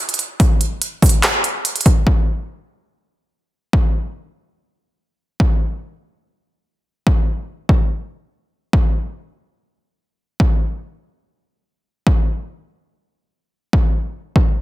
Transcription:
0.09 closed hi-hat
0.14 closed hi-hat
0.19 closed hi-hat
0.40 kick, closed hi-hat
0.61 closed hi-hat
0.82 closed hi-hat
1.02 kick, closed hi-hat, open hi-hat
1.09 closed hi-hat
1.23 clap, closed hi-hat
1.44 closed hi-hat
1.65 closed hi-hat
1.76 closed hi-hat
1.81 closed hi-hat
1.86 kick, closed hi-hat
2.07 kick
3.73 kick
5.40 kick
7.07 kick
7.69 kick
8.73 kick
10.40 kick
12.07 kick
13.73 kick
14.36 kick

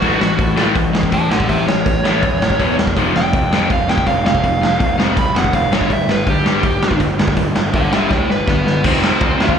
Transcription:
Already playing: F#4
0.02 A1 A2 E3 A3, kick, open hi-hat
0.20 A1 A2 E3, snare
0.38 A2 E3, kick, open hi-hat
0.57 A2 E3 A3, snare
0.75 A1 A2 E3, kick, open hi-hat
0.92 A2 E3, snare
1.03 kick
1.12 A1 A2 E3 C#5 A5, kick, open hi-hat
1.31 A1 A2 E3 A4 F#5, snare
1.40 kick
1.48 A1 A2 E3 G4 E5, kick, open hi-hat
1.67 A2 E3 C#5, snare
1.85 A1 A2 E3, kick, open hi-hat
2.03 A1 A2 E3 A3, snare
2.22 E2 A2 E3, kick, open hi-hat
2.41 A1 A2 E3, snare
2.50 kick
2.58 E1 E2 B2 E3, kick, open hi-hat
2.79 E2 B2, snare
2.87 kick
2.96 F1 F2 C3 F3, kick, open hi-hat
3.15 F1 F2 C3 G5, snare
3.33 F2 C3, kick, open hi-hat
3.52 F2 C3 F3, snare
3.70 F1 F2 C3 F5, kick, open hi-hat
3.88 F2 C3 G5, snare
3.98 kick
4.07 F1 F2 C3 F5, kick, open hi-hat
4.25 F1 F2 C3 F5, snare
4.35 kick
4.44 F1 F2 C3, kick, open hi-hat
4.63 F2 C3, snare
4.80 F1 F2 C3, kick, open hi-hat
4.98 F1 F2 C3 F3, snare
5.17 C2 F2 C3 B5, kick, open hi-hat
5.35 F1 F2 C3 F#5, snare
5.44 kick
5.53 F1 F2 C3 F5, kick, open hi-hat
5.72 G1 G2 D3 G3 C#5, snare
5.81 kick
5.90 G1 G2 D3 E5, kick, open hi-hat
6.08 G1 G2 D3 B4, snare
6.27 G2 D3 G4, kick, open hi-hat
6.46 G2 D3 G3, snare
6.63 G1 G2 D3, kick, open hi-hat
6.83 G2 D3, snare
6.91 kick
7.00 G1 G2 D3, kick, open hi-hat
7.19 G1 G2 D3, snare
7.28 kick
7.36 G1 G2 D3, kick, open hi-hat
7.56 G2 D3, snare
7.74 G1 G2 D3 A4 F#5, kick, open hi-hat
7.93 G1 G2 D3 G3 G4 E5, snare
8.10 D2 G2 D3 E4 C#5, kick, snare
8.30 G1 G2 D3 B4, snare
8.48 G1 G2 D3 B3, kick, snare
8.52 B4
8.66 G2 D3, snare
8.84 F1 F2 C3 F3 C4 C5, kick, crash
9.04 snare
9.21 D2, kick, ride
9.40 D2 F2 C3 F3 F4 F5, snare
9.49 kick

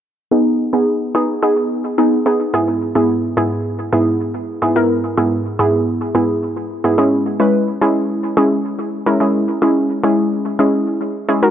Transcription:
0.31 B3 D#4 G#4
0.73 B3 D#4 G#4
1.15 B3 D#4 G#4
1.43 B3 D#4 G#4
1.98 B3 D#4 G#4
2.26 B3 D#4 G#4
2.54 G#2 B3 E4 G#4
2.95 G#2 B3 E4 G#4
3.37 G#2 B3 E4 G#4
3.93 G#2 B3 E4 G#4
4.62 G#2 B3 E4 G#4
4.76 G#2 B3 E4 A#4
5.18 G#2 B3 E4 G#4
5.59 G#2 B3 E4 G#4
6.15 G#2 B3 E4 G#4
6.84 G#2 B3 E4 G#4
6.98 G#3 C#4 E4 G#4
7.40 G#3 C#4 E4 B4
7.82 G#3 C#4 E4 G#4
8.37 G#3 C#4 E4 G#4
9.06 G#3 C#4 E4 A#4
9.20 G#3 C#4 E4 G#4
9.62 G#3 C#4 E4 G#4
10.04 G#3 C#4 E4 G#4
10.59 G#3 C#4 E4 G#4
11.29 G#3 C#4 E4 G#4
11.43 G#3 D#4 F#4 A#4

